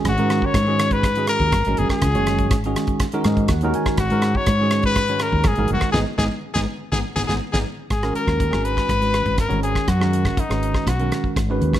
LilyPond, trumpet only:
\new Staff \with { instrumentName = "Trumpet" } { \time 4/4 \key gis \minor \tempo 4 = 122 fis'8. cis''4 b'8. ais'4 gis'16 gis'16~ | gis'4~ gis'16 r2 r8. | fis'8. cis''4 b'8. ais'8 gis'8 fis'8 | gis'16 r16 gis'16 r8 gis'16 r8 gis'16 r16 gis'16 gis'16 r16 gis'16 r8 |
gis'8 ais'4 b'4. ais'8 gis'8 | fis'4 dis'4 fis'4 r4 | }